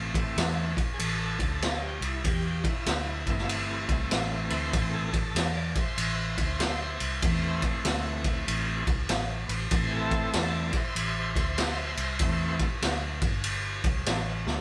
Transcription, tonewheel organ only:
0.00 0.72 E3 medium
0.00 0.73 A3 soft
0.00 0.73 C4 medium
0.94 0.99 G#4 medium
0.98 1.39 A4 loud
1.40 1.81 A4 medium
1.82 2.02 G4 medium
2.02 2.23 E4 medium
2.25 2.65 G4 medium
2.69 3.89 E4 medium
3.29 4.72 E3 medium
3.29 4.72 A3 medium
3.29 4.73 C4 medium
4.49 4.55 B4 medium
4.55 4.94 C5 loud
4.73 5.10 E3 medium
4.73 5.10 A3 soft
4.73 5.11 C4 medium
4.89 4.97 G#4 medium
4.93 5.55 A4 medium
5.56 5.77 D5 medium
5.77 7.61 C5 medium
5.77 7.61 E5 medium
7.23 8.46 E3 medium
7.23 8.47 A3 soft
7.23 8.47 C4 medium
8.47 8.84 E3 soft
8.47 8.84 A3 soft
8.47 8.84 C4 medium
9.47 9.53 B4 medium
9.53 9.93 C5 loud
9.73 10.71 E3 medium
9.73 10.72 A3 soft
9.73 10.72 C4 medium
9.91 9.97 G#4 medium
9.95 10.55 A4 loud
10.55 10.76 D5 medium
10.77 12.59 C5 medium
10.77 12.59 E5 loud
12.21 12.67 E3 medium
12.21 12.68 A3 soft
12.21 12.68 C4 medium

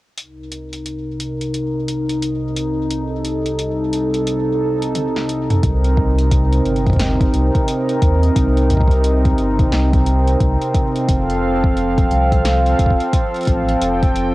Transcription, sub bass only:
5.63 6.61 C2 loud
6.66 7.29 G1 medium
7.34 7.50 C2 medium
8.02 8.30 D#2 medium
8.36 9.34 C2 loud
9.38 9.67 G1 medium
9.72 10.36 C2 loud
10.40 10.57 C2 loud
11.09 12.06 F1 loud
12.11 12.74 C2 medium
12.79 12.96 F1 medium
13.47 13.76 A1 medium
13.81 14.35 F1 loud

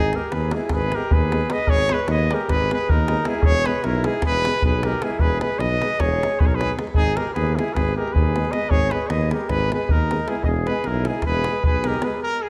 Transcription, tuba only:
0.00 0.13 G#1 medium
0.32 0.54 D#2 medium
0.71 0.93 G#1 medium
1.12 1.43 D#2 medium
1.68 1.90 G#1 medium
2.08 2.30 D#2 loud
2.48 2.70 G#1 medium
2.88 3.19 D#2 medium
3.45 3.67 E1 loud
3.85 4.07 B1 loud
4.26 4.47 E1 medium
4.64 4.95 B1 medium
5.19 5.41 E1 medium
5.59 5.81 B1 loud
6.00 6.22 E1 medium
6.41 6.71 B1 medium
6.96 7.17 G#1 medium
7.36 7.58 D#2 loud
7.74 7.96 G#1 medium
8.14 8.45 D#2 medium
8.70 8.92 G#1 loud
9.10 9.32 D#2 loud
9.50 9.72 G#1 loud
9.90 10.20 D#2 medium
10.45 10.67 E1 loud
10.87 11.08 B1 loud
11.26 11.47 E1 loud
11.66 11.96 B1 medium

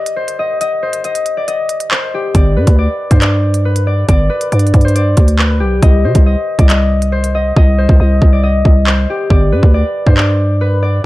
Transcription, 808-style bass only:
2.35 2.58 G1 loud
2.56 2.67 G2 loud
2.67 2.88 D2 loud
3.11 4.05 G2 loud
4.09 4.30 G1 loud
4.52 4.73 G2 loud
4.74 5.16 G2 loud
5.17 5.62 D2 loud
5.61 5.81 B1 loud
5.83 6.06 C2 loud
6.04 6.15 C3 loud
6.15 6.36 C2 loud
6.59 7.53 C2 loud
7.56 7.88 C2 loud
7.89 8.00 C2 loud
8.00 8.21 C2 loud
8.22 8.63 C2 loud
8.65 9.07 C2 loud
9.30 9.54 G1 loud
9.52 9.62 G2 loud
9.63 9.84 D2 loud
10.07 11.00 G2 loud

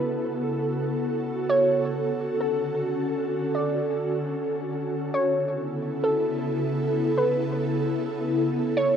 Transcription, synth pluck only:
0.00 0.12 B4 medium
1.50 1.92 C#5 loud
2.41 2.83 A4 medium
3.55 3.76 D5 medium
5.14 5.56 C#5 medium
6.04 6.47 A4 medium
7.18 7.39 B4 medium
8.77 8.97 C#5 loud

